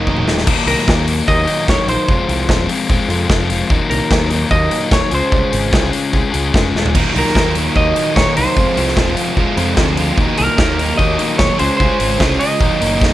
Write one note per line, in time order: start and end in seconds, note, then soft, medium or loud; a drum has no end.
0.00 0.24 D#5 medium
0.07 0.25 F1 medium
0.07 0.46 D#3 medium
0.07 0.47 F#3 medium
0.07 0.47 A#3 medium
0.07 0.48 D#4 medium
0.07 kick loud
0.17 mid tom medium
0.27 0.45 D#1 medium
0.27 snare medium
0.38 snare medium
0.47 0.55 D#1 loud
0.47 0.86 D#2 medium
0.47 0.87 A#2 medium
0.47 0.69 D#3 medium
0.47 0.68 F#3 medium
0.47 0.68 A#3 loud
0.47 0.66 D#4 medium
0.47 kick loud
0.47 crash loud
0.66 0.75 C2 medium
0.66 0.88 F#3 medium
0.66 0.89 A#3 medium
0.66 0.89 D#4 medium
0.66 1.05 A#4 loud
0.66 open hi-hat medium
0.71 0.88 D#3 medium
0.79 snare soft
0.87 1.28 D#2 loud
0.87 1.21 D#2 medium
0.87 1.28 A#2 medium
0.87 1.09 D#3 medium
0.87 1.08 F#3 medium
0.87 1.07 A#3 loud
0.87 1.06 D#4 loud
0.87 kick loud
0.87 snare loud
1.07 1.25 D#3 medium
1.07 1.27 F#3 medium
1.07 1.28 A#3 medium
1.07 1.29 D#4 medium
1.07 open hi-hat medium
1.27 1.45 D#2 loud
1.27 1.47 D#3 medium
1.27 1.47 F#3 medium
1.27 1.46 A#3 medium
1.27 1.46 D#4 medium
1.27 1.66 D#5 loud
1.27 kick loud
1.47 1.90 D#2 medium
1.47 1.89 A#2 medium
1.47 1.66 D#3 medium
1.47 1.67 F#3 medium
1.47 1.69 A#3 loud
1.47 1.70 D#4 loud
1.47 open hi-hat medium
1.68 1.77 D#1 loud
1.68 1.90 D#3 medium
1.68 1.89 F#3 medium
1.68 1.88 A#3 medium
1.68 1.87 D#4 medium
1.68 1.89 C#5 loud
1.68 kick loud
1.68 snare loud
1.87 1.96 A#1 medium
1.87 2.08 F#3 medium
1.87 2.08 A#3 medium
1.87 2.08 D#4 medium
1.87 2.66 C5 medium
1.87 open hi-hat medium
1.91 2.09 D#3 medium
2.08 2.17 F1 loud
2.08 2.48 F2 loud
2.08 2.49 C3 medium
2.08 2.30 F3 loud
2.08 2.30 G#3 medium
2.08 2.28 C4 medium
2.08 2.27 F4 loud
2.08 kick loud
2.28 2.45 C2 medium
2.28 2.50 F3 medium
2.28 2.50 G#3 medium
2.28 2.51 C4 medium
2.28 2.51 F4 medium
2.28 open hi-hat medium
2.49 2.66 D#1 medium
2.49 2.90 F2 loud
2.49 2.90 C3 loud
2.49 2.72 F3 loud
2.49 2.71 G#3 medium
2.49 2.69 C4 medium
2.49 2.68 F4 loud
2.49 kick loud
2.49 snare loud
2.69 2.87 F3 medium
2.69 2.88 G#3 medium
2.69 2.89 C4 medium
2.69 2.91 F4 medium
2.69 open hi-hat medium
2.89 2.98 D#1 loud
2.89 3.11 F3 medium
2.89 3.11 G#3 medium
2.89 3.10 C4 medium
2.89 3.09 F4 medium
2.89 kick loud
3.09 3.26 F2 medium
3.09 3.52 C3 medium
3.09 3.28 F3 medium
3.09 3.29 G#3 medium
3.09 3.30 C4 medium
3.09 3.32 F4 loud
3.09 open hi-hat medium
3.13 3.52 F2 medium
3.29 3.63 F1 medium
3.29 3.51 F3 medium
3.29 3.50 G#3 medium
3.29 3.49 C4 medium
3.29 3.49 F4 medium
3.29 kick loud
3.29 snare loud
3.50 3.70 F3 medium
3.50 3.70 G#3 medium
3.50 3.69 C4 medium
3.50 3.69 F4 medium
3.50 open hi-hat medium
3.69 3.79 D#1 medium
3.69 4.09 D#2 medium
3.69 4.10 A#2 loud
3.69 3.91 D#3 loud
3.69 3.90 F#3 loud
3.69 3.89 A#3 loud
3.69 3.88 D#4 loud
3.69 kick loud
3.90 3.99 C2 medium
3.90 4.10 D#3 medium
3.90 4.11 F#3 medium
3.90 4.11 A#3 medium
3.90 4.12 D#4 medium
3.90 4.28 A#4 loud
3.90 open hi-hat medium
4.10 4.51 D#2 medium
4.10 4.44 D#2 medium
4.10 4.52 A#2 medium
4.10 4.32 D#3 loud
4.10 4.31 F#3 loud
4.10 4.30 A#3 loud
4.10 4.29 D#4 medium
4.10 kick loud
4.10 snare loud
4.30 4.49 D#3 medium
4.30 4.50 F#3 medium
4.30 4.52 A#3 medium
4.30 4.52 D#4 medium
4.30 open hi-hat medium
4.50 4.68 D#2 loud
4.50 4.71 D#3 medium
4.50 4.70 F#3 medium
4.50 4.70 A#3 medium
4.50 4.69 D#4 medium
4.50 4.92 D#5 loud
4.50 kick loud
4.71 5.12 D#2 medium
4.71 5.12 A#2 medium
4.71 4.89 D#3 medium
4.71 4.91 F#3 medium
4.71 4.92 A#3 medium
4.71 4.93 D#4 loud
4.71 open hi-hat medium
4.91 5.00 D#1 loud
4.91 5.10 D#3 medium
4.91 5.11 F#3 medium
4.91 5.11 A#3 medium
4.91 5.11 D#4 medium
4.91 5.13 C#5 loud
4.91 kick loud
4.91 snare loud
5.11 5.20 C#2 medium
5.11 5.30 C#3 medium
5.11 5.31 G#3 medium
5.11 5.32 C#4 medium
5.11 5.32 F4 medium
5.11 5.33 G#4 medium
5.11 5.90 C5 medium
5.11 open hi-hat medium
5.31 5.41 C2 medium
5.31 5.70 C#3 loud
5.31 5.71 G#3 loud
5.31 5.54 C#4 loud
5.31 5.51 F4 loud
5.31 5.50 G#4 loud
5.31 kick loud
5.51 5.69 G#1 medium
5.51 5.72 C#4 medium
5.51 5.72 F4 medium
5.51 5.73 G#4 medium
5.51 open hi-hat medium
5.71 5.89 C2 loud
5.71 6.13 C#3 medium
5.71 6.11 G#3 medium
5.71 5.94 C#4 loud
5.71 5.92 F4 loud
5.71 5.90 G#4 loud
5.71 kick loud
5.71 snare loud
5.91 6.12 C#4 medium
5.91 6.13 F4 medium
5.91 6.14 G#4 medium
5.91 open hi-hat medium
6.12 6.22 C2 loud
6.12 6.34 G#3 medium
6.12 6.33 C#4 medium
6.12 6.32 F4 medium
6.12 6.31 G#4 medium
6.12 kick loud
6.32 6.50 C#2 medium
6.32 6.75 C#3 medium
6.32 6.52 G#3 medium
6.32 6.54 C#4 medium
6.32 6.55 F4 medium
6.32 6.55 G#4 loud
6.32 open hi-hat medium
6.53 6.72 F1 medium
6.53 6.93 G#3 medium
6.53 6.76 C#4 medium
6.53 6.75 F4 medium
6.53 6.73 G#4 medium
6.53 kick loud
6.53 snare loud
6.74 6.93 D#1 medium
6.74 6.95 C#4 medium
6.74 6.94 F4 medium
6.74 6.93 G#4 medium
6.74 snare medium
6.86 floor tom medium
6.94 7.03 D#1 medium
6.94 7.34 D#2 loud
6.94 7.35 A#2 loud
6.94 7.17 D#3 loud
6.94 7.16 F#3 loud
6.94 7.14 A#3 loud
6.94 7.13 D#4 loud
6.94 kick loud
6.94 crash loud
7.14 7.23 C2 medium
7.14 7.36 D#3 medium
7.14 7.37 F#3 medium
7.14 7.37 A#3 medium
7.14 7.37 D#4 medium
7.14 7.54 A#4 loud
7.14 open hi-hat medium
7.27 snare soft
7.35 7.68 D#2 medium
7.35 7.76 D#2 medium
7.35 7.76 A#2 medium
7.35 7.58 D#3 loud
7.35 7.58 F#3 loud
7.35 7.56 A#3 medium
7.35 7.55 D#4 loud
7.35 kick loud
7.35 snare loud
7.55 7.75 D#3 medium
7.55 7.76 F#3 medium
7.55 7.78 A#3 medium
7.55 7.78 D#4 medium
7.55 open hi-hat medium
7.76 7.92 D#2 loud
7.76 7.97 D#3 medium
7.76 7.96 F#3 medium
7.76 7.96 A#3 medium
7.76 7.95 D#4 medium
7.76 8.16 D#5 loud
7.76 kick loud
7.96 8.38 D#2 medium
7.96 8.37 A#2 medium
7.96 8.15 D#3 medium
7.96 8.16 F#3 medium
7.96 8.17 A#3 medium
7.96 8.18 D#4 medium
7.96 open hi-hat medium
8.16 8.24 D#1 loud
8.16 8.37 D#3 medium
8.16 8.37 F#3 medium
8.16 8.36 A#3 medium
8.16 8.35 D#4 medium
8.16 8.37 C#5 loud
8.16 kick loud
8.16 snare loud
8.36 8.45 C2 medium
8.36 8.56 D#3 medium
8.36 8.56 F#3 medium
8.36 8.55 A#3 medium
8.36 8.55 D#4 medium
8.36 9.13 C5 medium
8.36 open hi-hat medium
8.56 8.65 F1 loud
8.56 8.94 F2 medium
8.56 8.96 C3 loud
8.56 8.78 F3 loud
8.56 8.77 G#3 loud
8.56 8.76 C4 loud
8.56 8.75 F4 loud
8.56 kick loud
8.76 8.93 C2 medium
8.76 8.96 F3 medium
8.76 8.97 G#3 medium
8.76 8.97 C4 medium
8.76 8.98 F4 medium
8.76 open hi-hat medium
8.88 snare soft
8.95 9.14 D#1 loud
8.95 9.36 F2 medium
8.95 9.37 C3 medium
8.95 9.18 F3 loud
8.95 9.17 G#3 medium
8.95 9.16 C4 loud
8.95 9.15 F4 loud
8.95 kick loud
8.95 snare loud
9.16 9.36 F3 medium
9.16 9.37 G#3 medium
9.16 9.38 C4 medium
9.16 9.39 F4 medium
9.16 open hi-hat medium
9.37 9.45 D#1 loud
9.37 9.58 F3 medium
9.37 9.58 G#3 medium
9.37 9.56 C4 medium
9.37 9.56 F4 medium
9.37 kick medium
9.57 9.74 F2 loud
9.57 9.99 F2 medium
9.57 9.99 C3 medium
9.57 9.76 F3 medium
9.57 9.78 G#3 loud
9.57 9.78 C4 loud
9.57 9.79 F4 medium
9.57 open hi-hat medium
9.77 10.11 D2 loud
9.77 10.00 F3 medium
9.77 9.99 G#3 medium
9.77 9.98 C4 medium
9.77 9.97 F4 medium
9.77 kick loud
9.77 snare loud
9.97 10.18 F3 medium
9.97 10.18 G#3 medium
9.97 10.17 C4 medium
9.97 10.17 F4 medium
9.97 open hi-hat medium
10.17 10.26 D#1 medium
10.17 10.57 D#2 medium
10.17 10.58 A#2 loud
10.17 10.41 D#3 loud
10.17 10.40 F#3 loud
10.17 10.39 A#3 loud
10.17 10.38 D#4 loud
10.17 kick loud
10.38 10.47 C2 medium
10.38 10.60 F#3 medium
10.38 10.60 A#3 medium
10.38 10.60 D#4 medium
10.38 11.01 A#4 loud
10.38 open hi-hat medium
10.42 10.59 D#3 medium
10.58 10.91 D#2 medium
10.58 10.99 D#2 loud
10.58 10.99 A#2 loud
10.58 10.82 D#3 loud
10.58 10.81 F#3 medium
10.58 10.80 A#3 loud
10.58 10.79 D#4 loud
10.58 kick loud
10.58 snare loud
10.79 10.97 D#3 medium
10.79 10.99 F#3 medium
10.79 11.00 A#3 medium
10.79 11.01 D#4 medium
10.79 open hi-hat medium
10.97 11.16 D#2 loud
10.97 11.20 D#3 medium
10.97 11.19 F#3 medium
10.97 11.18 A#3 medium
10.97 11.36 D#5 loud
10.97 kick loud
11.02 11.18 D#4 medium
11.19 11.60 D#2 medium
11.19 11.60 A#2 medium
11.19 11.38 D#3 medium
11.19 11.39 F#3 loud
11.19 11.40 A#3 medium
11.19 11.41 D#4 loud
11.19 open hi-hat medium
11.38 11.48 D#1 loud
11.38 11.58 D#3 medium
11.38 11.59 F#3 medium
11.38 11.59 A#3 medium
11.38 11.59 C#5 loud
11.38 kick loud
11.38 snare loud
11.42 11.58 D#4 medium
11.58 11.68 C#2 loud
11.58 11.78 C#3 medium
11.58 11.78 G#3 medium
11.58 11.80 C#4 medium
11.58 11.80 F4 medium
11.58 11.81 G#4 medium
11.58 11.76 C5 medium
11.58 open hi-hat medium
11.77 11.88 C2 loud
11.77 12.17 C#3 medium
11.77 12.19 G#3 medium
11.77 12.35 C5 loud
11.77 kick loud
11.81 12.01 C#4 loud
11.81 12.00 F4 loud
11.81 11.98 G#4 loud
11.99 12.16 G#1 medium
11.99 12.19 C#4 medium
11.99 12.20 F4 medium
11.99 12.20 G#4 medium
11.99 open hi-hat medium
12.19 12.37 C2 loud
12.19 12.59 C#3 loud
12.19 12.59 G#3 loud
12.19 12.42 C#4 loud
12.19 12.41 F4 loud
12.19 12.39 G#4 loud
12.19 kick loud
12.19 snare loud
12.39 12.61 C#4 medium
12.39 12.60 F4 medium
12.39 12.59 G#4 medium
12.39 13.13 D#5 medium
12.39 open hi-hat medium
12.59 12.69 D#1 loud
12.59 12.82 D#2 medium
12.59 12.81 A#2 loud
12.59 12.81 D#3 loud
12.59 12.80 F#3 loud
12.59 12.79 A#3 loud
12.59 12.79 D#4 loud
12.59 kick loud
12.80 12.99 F#1 medium
12.80 13.13 D#2 medium
12.80 13.13 A#2 medium
12.80 12.99 D#3 medium
12.80 13.00 F#3 medium
12.80 13.01 A#3 medium
12.80 13.02 D#4 loud
12.80 open hi-hat medium
13.00 13.13 F1 medium
13.00 13.13 D#3 medium
13.00 13.13 F#3 medium
13.00 13.13 A#3 medium
13.00 13.13 D#4 medium
13.00 kick loud
13.00 snare medium